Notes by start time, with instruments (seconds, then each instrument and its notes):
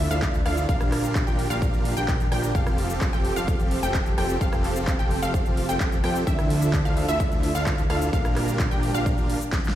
Already playing: string section D3 F3 D4 E5
0.11 analog synth bass D2, supersaw synth D4 E4 F4 A4 F5, synth pluck F5, shaker
0.22 kick, clap, closed hi-hat, shaker
0.34 closed hi-hat, shaker
0.45 analog synth bass D2, supersaw synth D4 E4 F4 A4 F5, synth pluck F5, cross-stick, open hi-hat
0.58 shaker
0.69 analog synth bass A#1, string section A#3 G4, supersaw synth D4 F4 G4 A#4 F5, synth pluck F5, kick, closed hi-hat, shaker
0.81 cross-stick, closed hi-hat, shaker
0.92 cross-stick, clap, open hi-hat
1.04 closed hi-hat, shaker
1.15 kick, clap, closed hi-hat, shaker
1.27 analog synth bass A#1, supersaw synth D4 F4 G4 A#4 G5, synth pluck G5, closed hi-hat, shaker
1.39 open hi-hat
1.50 analog synth bass A#1, supersaw synth D4 F4 G4 A#4 F5, synth pluck F5, shaker
1.62 kick, closed hi-hat, shaker
1.74 closed hi-hat, shaker
1.85 open hi-hat
1.97 analog synth bass A#1, supersaw synth D4 F4 G4 A#4 G5, synth pluck G5, closed hi-hat, shaker
2.08 kick, clap, closed hi-hat, shaker
2.20 closed hi-hat, shaker
2.32 analog synth bass A#1, supersaw synth D4 F4 G4 A#4 G5, synth pluck G5, cross-stick, open hi-hat
2.43 closed hi-hat, shaker
2.55 analog synth bass F1, string section F3 C4 A4, supersaw synth C4 F4 G4 A4 F5, synth pluck F5, kick, closed hi-hat, shaker
2.67 cross-stick, closed hi-hat, shaker
2.78 open hi-hat
2.90 closed hi-hat, shaker
3.01 kick, clap, closed hi-hat, shaker
3.13 analog synth bass F1, supersaw synth C4 F4 G4 A4 G5, synth pluck G5, closed hi-hat, shaker
3.25 open hi-hat
3.36 analog synth bass F1, supersaw synth C4 F4 G4 A4 F5, synth pluck F5, closed hi-hat, shaker
3.48 kick, closed hi-hat, shaker
3.60 closed hi-hat, shaker
3.71 open hi-hat
3.83 analog synth bass F1, supersaw synth C4 F4 G4 A4 G5, synth pluck G5, shaker
3.94 kick, clap, closed hi-hat, shaker
4.06 closed hi-hat, shaker
4.18 analog synth bass F1, supersaw synth C4 F4 G4 A4 G5, synth pluck G5, cross-stick, open hi-hat
4.29 closed hi-hat, shaker
4.41 analog synth bass F1, supersaw synth C4 F4 G4 A4 F5, synth pluck F5, kick, closed hi-hat, shaker
4.53 cross-stick, closed hi-hat, shaker
4.64 clap, open hi-hat
4.76 closed hi-hat, shaker
4.87 kick, clap, closed hi-hat, shaker
4.99 analog synth bass F1, supersaw synth C4 F4 G4 A4 G5, synth pluck G5, closed hi-hat, shaker
5.11 open hi-hat
5.22 analog synth bass F1, supersaw synth C4 F4 G4 A4 F5, synth pluck F5, closed hi-hat, shaker
5.34 kick, closed hi-hat, shaker
5.46 closed hi-hat, shaker
5.57 open hi-hat
5.69 analog synth bass F1, supersaw synth C4 F4 G4 A4 G5, synth pluck G5, closed hi-hat, shaker
5.80 kick, clap, closed hi-hat, shaker
5.92 closed hi-hat, shaker
6.04 analog synth bass F2, supersaw synth C4 F4 G4 A4 G5, synth pluck G5, cross-stick, open hi-hat
6.15 closed hi-hat, shaker
6.27 analog synth bass D2, string section D3 F3 A3 E5, supersaw synth D4 E4 F4 A4 E5, synth pluck E5, kick, closed hi-hat, shaker
6.39 cross-stick, closed hi-hat, shaker
6.50 open hi-hat
6.62 closed hi-hat, shaker
6.73 kick, clap, closed hi-hat, shaker
6.85 analog synth bass D2, supersaw synth D4 E4 F4 A4 F5, synth pluck F5, closed hi-hat, shaker
6.97 open hi-hat
7.08 analog synth bass D2, supersaw synth D4 E4 F4 A4 E5, synth pluck E5, closed hi-hat, shaker
7.20 kick, closed hi-hat, shaker
7.32 closed hi-hat, shaker
7.43 open hi-hat
7.55 analog synth bass D2, supersaw synth D4 E4 F4 A4 F5, synth pluck F5, closed hi-hat, shaker
7.66 kick, clap, closed hi-hat, shaker
7.78 closed hi-hat, shaker
7.90 analog synth bass D2, supersaw synth D4 E4 F4 A4 F5, synth pluck F5, cross-stick, open hi-hat
8.02 closed hi-hat, shaker
8.13 analog synth bass A#1, string section G3 A#3 D4, supersaw synth D4 F4 G4 A#4 F5, synth pluck F5, kick, closed hi-hat, shaker
8.25 cross-stick, closed hi-hat, shaker
8.36 cross-stick, clap, open hi-hat
8.48 closed hi-hat, shaker
8.59 kick, clap, closed hi-hat, shaker
8.71 analog synth bass A#1, supersaw synth D4 F4 G4 A#4 G5, synth pluck G5, closed hi-hat, shaker
8.83 open hi-hat
8.94 analog synth bass A#1, supersaw synth D4 F4 G4 A#4 F5, synth pluck F5, closed hi-hat, shaker
9.06 kick, closed hi-hat, shaker
9.18 closed hi-hat, shaker
9.30 open hi-hat
9.41 closed hi-hat, shaker
9.53 kick, snare, clap, closed hi-hat, shaker
9.64 snare, closed hi-hat, shaker